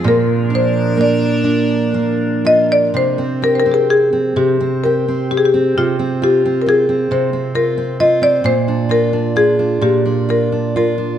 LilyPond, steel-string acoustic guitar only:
\new Staff \with { instrumentName = "Steel-string acoustic guitar" } { \time 3/4 \key bes \mixolydian \tempo 4 = 64 bes,8 d'8 bes8 d'8 bes8 f'8 | c16 c'16 g'16 c'8 c'16 c16 c'16 g'16 c'16 g'16 c'16 | c16 c'16 f'16 c'16 f'16 c'16 c16 c'16 f'16 c'16 f'16 c'16 | bes,16 d'16 f'16 d'16 f'16 d'16 bes,16 d'16 f'16 d'16 f'16 d'16 | }